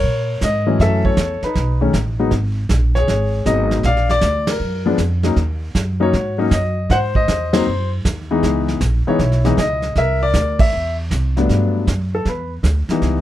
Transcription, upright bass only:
0, 0, Header, 1, 3, 480
1, 0, Start_track
1, 0, Tempo, 381922
1, 998, Time_signature, 4, 2, 24, 8
1, 16602, End_track
2, 0, Start_track
2, 0, Title_t, "Upright bass"
2, 0, Program_c, 0, 32
2, 40, Note_on_c, 0, 46, 78
2, 504, Note_off_c, 0, 46, 0
2, 524, Note_on_c, 0, 44, 85
2, 986, Note_off_c, 0, 44, 0
2, 996, Note_on_c, 0, 42, 85
2, 1461, Note_off_c, 0, 42, 0
2, 1470, Note_on_c, 0, 40, 93
2, 1769, Note_off_c, 0, 40, 0
2, 1956, Note_on_c, 0, 35, 76
2, 2419, Note_off_c, 0, 35, 0
2, 2428, Note_on_c, 0, 33, 90
2, 2894, Note_off_c, 0, 33, 0
2, 2908, Note_on_c, 0, 32, 86
2, 3374, Note_off_c, 0, 32, 0
2, 3387, Note_on_c, 0, 34, 94
2, 3853, Note_off_c, 0, 34, 0
2, 3862, Note_on_c, 0, 32, 75
2, 4330, Note_off_c, 0, 32, 0
2, 4344, Note_on_c, 0, 32, 88
2, 4811, Note_off_c, 0, 32, 0
2, 4822, Note_on_c, 0, 34, 85
2, 5290, Note_off_c, 0, 34, 0
2, 5302, Note_on_c, 0, 38, 91
2, 5769, Note_off_c, 0, 38, 0
2, 5780, Note_on_c, 0, 42, 77
2, 6248, Note_off_c, 0, 42, 0
2, 6260, Note_on_c, 0, 41, 93
2, 6728, Note_off_c, 0, 41, 0
2, 6737, Note_on_c, 0, 39, 84
2, 7206, Note_off_c, 0, 39, 0
2, 7223, Note_on_c, 0, 42, 90
2, 7689, Note_off_c, 0, 42, 0
2, 7708, Note_on_c, 0, 44, 71
2, 8172, Note_off_c, 0, 44, 0
2, 8181, Note_on_c, 0, 42, 91
2, 8649, Note_off_c, 0, 42, 0
2, 8667, Note_on_c, 0, 44, 87
2, 9132, Note_off_c, 0, 44, 0
2, 9156, Note_on_c, 0, 40, 87
2, 9617, Note_off_c, 0, 40, 0
2, 9638, Note_on_c, 0, 42, 75
2, 10098, Note_off_c, 0, 42, 0
2, 10115, Note_on_c, 0, 39, 89
2, 10577, Note_off_c, 0, 39, 0
2, 10591, Note_on_c, 0, 37, 86
2, 11056, Note_off_c, 0, 37, 0
2, 11068, Note_on_c, 0, 34, 91
2, 11365, Note_off_c, 0, 34, 0
2, 11548, Note_on_c, 0, 35, 82
2, 12015, Note_off_c, 0, 35, 0
2, 12030, Note_on_c, 0, 37, 91
2, 12496, Note_off_c, 0, 37, 0
2, 12516, Note_on_c, 0, 36, 88
2, 12980, Note_off_c, 0, 36, 0
2, 12988, Note_on_c, 0, 38, 91
2, 13457, Note_off_c, 0, 38, 0
2, 13479, Note_on_c, 0, 40, 78
2, 13943, Note_off_c, 0, 40, 0
2, 13960, Note_on_c, 0, 36, 91
2, 14424, Note_off_c, 0, 36, 0
2, 14445, Note_on_c, 0, 43, 78
2, 14907, Note_off_c, 0, 43, 0
2, 14920, Note_on_c, 0, 42, 88
2, 15385, Note_off_c, 0, 42, 0
2, 15397, Note_on_c, 0, 40, 79
2, 15865, Note_off_c, 0, 40, 0
2, 15874, Note_on_c, 0, 38, 88
2, 16174, Note_off_c, 0, 38, 0
2, 16359, Note_on_c, 0, 37, 89
2, 16602, Note_off_c, 0, 37, 0
2, 16602, End_track
3, 0, Start_track
3, 0, Title_t, "Muted upright bass strokes"
3, 1788, Note_on_c, 9, 29, 39
3, 1914, Note_off_c, 9, 29, 0
3, 11396, Note_on_c, 9, 29, 40
3, 11522, Note_off_c, 9, 29, 0
3, 16189, Note_on_c, 9, 29, 36
3, 16315, Note_off_c, 9, 29, 0
3, 16602, End_track
0, 0, End_of_file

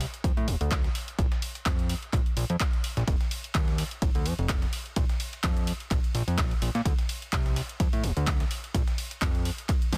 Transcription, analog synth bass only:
0, 0, Header, 1, 2, 480
1, 0, Start_track
1, 0, Key_signature, -2, "major"
1, 0, Tempo, 472441
1, 1204, Time_signature, 4, 2, 24, 8
1, 10137, End_track
2, 0, Start_track
2, 0, Title_t, "Analog synth bass"
2, 0, Program_c, 0, 38
2, 244, Note_on_c, 0, 41, 84
2, 326, Note_off_c, 0, 41, 0
2, 377, Note_on_c, 0, 45, 105
2, 484, Note_on_c, 0, 26, 100
2, 499, Note_off_c, 0, 45, 0
2, 566, Note_off_c, 0, 26, 0
2, 617, Note_on_c, 0, 38, 84
2, 899, Note_off_c, 0, 38, 0
2, 1205, Note_on_c, 0, 34, 98
2, 1286, Note_off_c, 0, 34, 0
2, 1685, Note_on_c, 0, 41, 104
2, 1976, Note_off_c, 0, 41, 0
2, 2165, Note_on_c, 0, 34, 93
2, 2246, Note_off_c, 0, 34, 0
2, 2405, Note_on_c, 0, 34, 102
2, 2487, Note_off_c, 0, 34, 0
2, 2538, Note_on_c, 0, 41, 97
2, 2604, Note_off_c, 0, 41, 0
2, 3018, Note_on_c, 0, 34, 85
2, 3084, Note_off_c, 0, 34, 0
2, 3125, Note_on_c, 0, 29, 102
2, 3206, Note_off_c, 0, 29, 0
2, 3604, Note_on_c, 0, 39, 102
2, 3896, Note_off_c, 0, 39, 0
2, 4084, Note_on_c, 0, 33, 85
2, 4166, Note_off_c, 0, 33, 0
2, 4218, Note_on_c, 0, 38, 104
2, 4326, Note_on_c, 0, 41, 98
2, 4341, Note_off_c, 0, 38, 0
2, 4407, Note_off_c, 0, 41, 0
2, 4457, Note_on_c, 0, 29, 85
2, 4739, Note_off_c, 0, 29, 0
2, 5044, Note_on_c, 0, 34, 101
2, 5126, Note_off_c, 0, 34, 0
2, 5524, Note_on_c, 0, 41, 107
2, 5816, Note_off_c, 0, 41, 0
2, 6004, Note_on_c, 0, 34, 96
2, 6086, Note_off_c, 0, 34, 0
2, 6243, Note_on_c, 0, 34, 101
2, 6326, Note_off_c, 0, 34, 0
2, 6376, Note_on_c, 0, 41, 95
2, 6484, Note_on_c, 0, 34, 103
2, 6499, Note_off_c, 0, 41, 0
2, 6642, Note_off_c, 0, 34, 0
2, 6724, Note_on_c, 0, 34, 92
2, 6806, Note_off_c, 0, 34, 0
2, 6856, Note_on_c, 0, 46, 98
2, 6923, Note_off_c, 0, 46, 0
2, 6964, Note_on_c, 0, 38, 100
2, 7046, Note_off_c, 0, 38, 0
2, 7444, Note_on_c, 0, 36, 106
2, 7736, Note_off_c, 0, 36, 0
2, 7924, Note_on_c, 0, 41, 85
2, 8006, Note_off_c, 0, 41, 0
2, 8057, Note_on_c, 0, 45, 105
2, 8165, Note_on_c, 0, 26, 97
2, 8180, Note_off_c, 0, 45, 0
2, 8246, Note_off_c, 0, 26, 0
2, 8297, Note_on_c, 0, 38, 84
2, 8579, Note_off_c, 0, 38, 0
2, 8885, Note_on_c, 0, 34, 100
2, 8966, Note_off_c, 0, 34, 0
2, 9364, Note_on_c, 0, 41, 106
2, 9656, Note_off_c, 0, 41, 0
2, 10085, Note_on_c, 0, 41, 96
2, 10137, Note_off_c, 0, 41, 0
2, 10137, End_track
0, 0, End_of_file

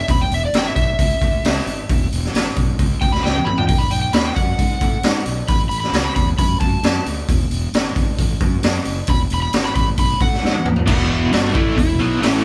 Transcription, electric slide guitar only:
0, 0, Header, 1, 2, 480
1, 0, Start_track
1, 0, Tempo, 449438
1, 96, Time_signature, 4, 2, 24, 8
1, 13290, End_track
2, 0, Start_track
2, 0, Title_t, "Electric slide guitar"
2, 0, Program_c, 0, 29
2, 111, Note_on_c, 0, 83, 95
2, 221, Note_off_c, 0, 83, 0
2, 227, Note_on_c, 0, 79, 94
2, 339, Note_off_c, 0, 79, 0
2, 365, Note_on_c, 0, 76, 98
2, 468, Note_off_c, 0, 76, 0
2, 485, Note_on_c, 0, 74, 83
2, 589, Note_off_c, 0, 74, 0
2, 596, Note_on_c, 0, 79, 83
2, 705, Note_off_c, 0, 79, 0
2, 711, Note_on_c, 0, 76, 83
2, 794, Note_off_c, 0, 76, 0
2, 807, Note_on_c, 0, 76, 94
2, 2216, Note_off_c, 0, 76, 0
2, 3214, Note_on_c, 0, 79, 89
2, 3334, Note_on_c, 0, 83, 82
2, 3337, Note_off_c, 0, 79, 0
2, 3448, Note_on_c, 0, 79, 88
2, 3458, Note_off_c, 0, 83, 0
2, 3547, Note_off_c, 0, 79, 0
2, 3560, Note_on_c, 0, 79, 102
2, 3684, Note_on_c, 0, 83, 83
2, 3690, Note_off_c, 0, 79, 0
2, 3812, Note_off_c, 0, 83, 0
2, 3822, Note_on_c, 0, 79, 93
2, 3914, Note_off_c, 0, 79, 0
2, 3927, Note_on_c, 0, 79, 93
2, 4041, Note_on_c, 0, 83, 102
2, 4054, Note_off_c, 0, 79, 0
2, 4171, Note_off_c, 0, 83, 0
2, 4171, Note_on_c, 0, 79, 83
2, 4277, Note_off_c, 0, 79, 0
2, 4289, Note_on_c, 0, 79, 82
2, 4414, Note_on_c, 0, 83, 101
2, 4416, Note_off_c, 0, 79, 0
2, 4536, Note_on_c, 0, 79, 85
2, 4538, Note_off_c, 0, 83, 0
2, 4648, Note_off_c, 0, 79, 0
2, 4653, Note_on_c, 0, 78, 109
2, 5592, Note_off_c, 0, 78, 0
2, 5861, Note_on_c, 0, 83, 107
2, 5981, Note_off_c, 0, 83, 0
2, 6081, Note_on_c, 0, 83, 85
2, 6185, Note_off_c, 0, 83, 0
2, 6197, Note_on_c, 0, 83, 82
2, 6329, Note_off_c, 0, 83, 0
2, 6454, Note_on_c, 0, 83, 90
2, 6563, Note_off_c, 0, 83, 0
2, 6576, Note_on_c, 0, 83, 88
2, 6698, Note_off_c, 0, 83, 0
2, 6822, Note_on_c, 0, 83, 93
2, 7049, Note_off_c, 0, 83, 0
2, 7053, Note_on_c, 0, 81, 108
2, 7525, Note_off_c, 0, 81, 0
2, 9717, Note_on_c, 0, 83, 105
2, 9825, Note_off_c, 0, 83, 0
2, 9975, Note_on_c, 0, 83, 85
2, 10051, Note_off_c, 0, 83, 0
2, 10064, Note_on_c, 0, 83, 84
2, 10178, Note_off_c, 0, 83, 0
2, 10310, Note_on_c, 0, 83, 93
2, 10413, Note_off_c, 0, 83, 0
2, 10425, Note_on_c, 0, 83, 92
2, 10538, Note_off_c, 0, 83, 0
2, 10672, Note_on_c, 0, 83, 89
2, 10897, Note_off_c, 0, 83, 0
2, 10910, Note_on_c, 0, 78, 103
2, 11368, Note_off_c, 0, 78, 0
2, 11608, Note_on_c, 0, 59, 87
2, 12099, Note_on_c, 0, 66, 91
2, 12105, Note_off_c, 0, 59, 0
2, 12325, Note_off_c, 0, 66, 0
2, 12329, Note_on_c, 0, 64, 90
2, 12562, Note_off_c, 0, 64, 0
2, 12575, Note_on_c, 0, 64, 94
2, 13050, Note_off_c, 0, 64, 0
2, 13055, Note_on_c, 0, 61, 79
2, 13282, Note_off_c, 0, 61, 0
2, 13290, End_track
0, 0, End_of_file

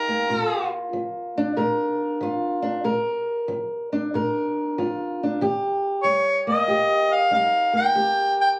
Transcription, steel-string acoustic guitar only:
0, 0, Header, 1, 2, 480
1, 0, Start_track
1, 0, Key_signature, -2, "major"
1, 0, Tempo, 638978
1, 219, Time_signature, 4, 2, 24, 8
1, 6457, End_track
2, 0, Start_track
2, 0, Title_t, "Steel-string acoustic guitar"
2, 0, Program_c, 0, 25
2, 0, Note_on_c, 0, 55, 63
2, 0, Note_on_c, 0, 63, 53
2, 0, Note_on_c, 0, 67, 72
2, 64, Note_on_c, 0, 58, 53
2, 186, Note_off_c, 0, 55, 0
2, 202, Note_off_c, 0, 63, 0
2, 218, Note_off_c, 0, 67, 0
2, 219, Note_on_c, 0, 46, 68
2, 223, Note_on_c, 0, 65, 61
2, 668, Note_off_c, 0, 46, 0
2, 700, Note_on_c, 0, 53, 66
2, 1030, Note_off_c, 0, 58, 0
2, 1033, Note_on_c, 0, 62, 71
2, 1148, Note_off_c, 0, 53, 0
2, 1176, Note_on_c, 0, 46, 68
2, 1179, Note_on_c, 0, 70, 72
2, 1627, Note_off_c, 0, 46, 0
2, 1657, Note_on_c, 0, 53, 60
2, 1663, Note_off_c, 0, 65, 0
2, 1672, Note_on_c, 0, 65, 56
2, 1962, Note_off_c, 0, 62, 0
2, 1971, Note_on_c, 0, 62, 52
2, 2107, Note_off_c, 0, 53, 0
2, 2117, Note_off_c, 0, 62, 0
2, 2127, Note_off_c, 0, 65, 0
2, 2135, Note_on_c, 0, 46, 70
2, 2136, Note_off_c, 0, 70, 0
2, 2139, Note_on_c, 0, 70, 68
2, 2586, Note_off_c, 0, 46, 0
2, 2614, Note_on_c, 0, 53, 60
2, 2949, Note_on_c, 0, 62, 56
2, 3065, Note_off_c, 0, 53, 0
2, 3111, Note_on_c, 0, 46, 68
2, 3116, Note_off_c, 0, 70, 0
2, 3119, Note_on_c, 0, 70, 72
2, 3553, Note_off_c, 0, 46, 0
2, 3592, Note_on_c, 0, 53, 55
2, 3594, Note_on_c, 0, 65, 48
2, 3904, Note_off_c, 0, 62, 0
2, 3931, Note_on_c, 0, 62, 49
2, 4034, Note_off_c, 0, 53, 0
2, 4047, Note_off_c, 0, 65, 0
2, 4056, Note_off_c, 0, 62, 0
2, 4066, Note_on_c, 0, 51, 70
2, 4068, Note_off_c, 0, 70, 0
2, 4072, Note_on_c, 0, 67, 66
2, 4510, Note_off_c, 0, 51, 0
2, 4539, Note_on_c, 0, 55, 60
2, 4860, Note_on_c, 0, 58, 59
2, 4986, Note_off_c, 0, 55, 0
2, 5015, Note_on_c, 0, 46, 61
2, 5017, Note_off_c, 0, 67, 0
2, 5020, Note_on_c, 0, 67, 68
2, 5465, Note_off_c, 0, 46, 0
2, 5490, Note_on_c, 0, 55, 63
2, 5495, Note_on_c, 0, 63, 56
2, 5806, Note_off_c, 0, 58, 0
2, 5809, Note_on_c, 0, 58, 53
2, 5941, Note_off_c, 0, 55, 0
2, 5956, Note_off_c, 0, 63, 0
2, 5967, Note_off_c, 0, 67, 0
2, 5973, Note_on_c, 0, 51, 70
2, 5976, Note_on_c, 0, 67, 63
2, 6422, Note_off_c, 0, 51, 0
2, 6457, Note_off_c, 0, 58, 0
2, 6457, Note_off_c, 0, 67, 0
2, 6457, End_track
0, 0, End_of_file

